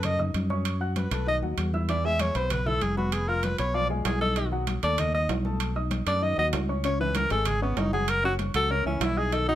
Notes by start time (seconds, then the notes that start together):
Already playing: F#2 A3 A4 A5
0.03 D#5, high conga, low conga, high timbale
0.19 D#4 D#5 D#6, high conga, low conga
0.34 F#2, high conga, high timbale
0.50 C#4 C#5 C#6, high conga
0.65 high conga, high timbale
0.81 F#4 F#5 F#6, high conga
0.96 B4, high conga, high timbale
1.11 B1 A3 A4 A5, high conga, high timbale
1.27 D#3 D#4 D#5, high conga
1.42 D#2 F#3 F#4 F#5, high conga
1.57 E2, high conga, high timbale
1.73 E4 E5 E6, high conga
1.89 E3 E4 D5 E5, high conga, high timbale
2.04 G#3 G#4 E5 G#5, high conga
2.19 C#5, high conga, high timbale
2.35 B1 B3 B4 C5 B5, high conga, high timbale
2.50 B4, high conga, low conga, high timbale
2.66 E4 A4 E5 E6, high conga, low conga
2.81 F1 G#4, high conga, high timbale
2.97 B3 F#4 B4 B5, high conga
3.12 G#4, high conga, high timbale
3.28 F4 A#4 F5 F6, high conga
3.43 B4, high conga, high timbale
3.58 B1 B3 B4 C#5 B5, high conga, high timbale
3.74 F3 F4 D5 F5, high conga
3.90 G#3 F4 G#4 G#5, high conga
4.05 B1 G#4, high conga, high timbale, low timbale
4.21 D#4 A4 D#5 D#6, high conga
4.36 D#3 D#4 D#5, high conga, high timbale
4.52 F#3 F#4 F#5, high conga
4.67 high conga, high timbale
4.83 D#2 A3 A4 D5 A5, high conga, high timbale
4.98 D#5, high conga, low conga, high timbale
5.14 D#4 D#5 D#6, high conga
5.29 B1, high conga, high timbale, low timbale
5.45 A3 A4 A5, high conga
5.60 high conga, high timbale
5.76 D#4 D#5 D#6, high conga
5.91 high conga, high timbale
6.06 F#2 A3 A4 D5 A5, high timbale
6.22 D#3 D#4 D#5, high conga
6.38 D#2 F#3 F#4 D#5 F#5, high conga
6.53 C#2, high conga, high timbale, low timbale
6.69 C#4 C#5 C#6
6.84 C#3 C#4 C#5, high conga, high timbale
7.00 E3 E4 B4 E5, high conga
7.15 A#4, high conga, high timbale
7.30 G#1 G#3 G#4 A4 G#5, high conga, high timbale
7.45 G#4, high conga, low conga, high timbale
7.62 B3 C#4 C#5 C#6, high conga
7.77 F#1 D#4, high conga, high timbale, low timbale
7.93 F#3 F#4 G#4 F#5, high conga
8.08 A#4, high conga, high timbale
8.24 C#4 F#4 C#5 C#6, high conga
8.39 high conga, high timbale
8.54 C#2 F#3 F#4 A4 F#5, high timbale
8.70 C#3 C#4 A#4 C#5, high conga
8.85 C#2 E3 C#4 E4 E5, high conga
9.01 B1 E4, high conga, high timbale, low timbale
9.17 D#4 G#4 D#5 D#6
9.32 D#3 D#4 A4 D#5, high conga, high timbale
9.48 F#3 D#4 F#4 F#5, high conga